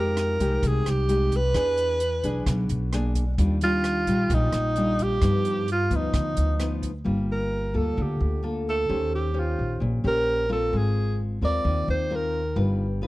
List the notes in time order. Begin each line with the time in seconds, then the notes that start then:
Already playing: F2 F3 G#3 D#4 G4
0.00 A#4
0.17 cross-stick, closed hi-hat
0.40 C2 G#3 D#4 G4, kick, closed hi-hat
0.63 C2 C3, kick, closed hi-hat
0.67 G#4
0.86 C2 G4, cross-stick, closed hi-hat
1.08 G#3 D#4 G4, closed hi-hat
1.32 kick, closed hi-hat
1.36 B4
1.54 E2 E3 D4 G#4, kick, cross-stick, closed hi-hat
1.77 closed hi-hat
2.00 closed hi-hat
2.23 B1 D4 G#4, kick, closed hi-hat
2.46 B1 B2, kick, cross-stick, closed hi-hat
2.69 B1, closed hi-hat
2.93 A#3 D4 G#4, cross-stick, closed hi-hat
3.15 kick, closed hi-hat
3.38 D#2 D#3 G3 D4 F4, kick, closed hi-hat
3.61 G3 D4 F4, closed hi-hat
3.84 cross-stick, closed hi-hat
4.07 A#1 G3 F4, kick, closed hi-hat
4.30 A#1 A#2 D#4, kick, closed hi-hat
4.53 A#1, cross-stick, closed hi-hat
4.76 G3 D4 F4, closed hi-hat
4.99 G4, kick, closed hi-hat
5.21 G2 F3 B3 D#4, kick, cross-stick, closed hi-hat
5.45 closed hi-hat
5.68 F4, closed hi-hat
5.90 D2 F3 B3, kick, closed hi-hat
5.95 D#4
6.14 D2, kick, cross-stick, closed hi-hat
6.37 D2, closed hi-hat
6.59 F3 B3 D#4, cross-stick, closed hi-hat
6.82 kick, closed hi-hat
7.04 G1 G3 A#3 F4
7.32 A#4
7.74 D2 A#3 F4 A4
7.97 D2 D3
8.02 G4
8.20 D2
8.43 A#3 F4 A4
8.69 A4
8.89 D#2 D#3 C#4 G4 C5
9.15 G4
9.34 C#4 G4 C5
9.39 F4
9.59 A#1
9.80 A#1 A#2
10.04 A#1 C#4 G4 A#4 C5
10.49 C4 F4 A4 A#4
10.73 G#1 G#3
10.77 G#4
11.41 D#2 C4 F4 A#4 D5
11.64 D#2 D#3
11.88 D#2 C5
12.10 C4 F4 A#4
12.15 A#4
12.55 G1 G3 D#4 F4 B4
13.02 D#4 F4 B4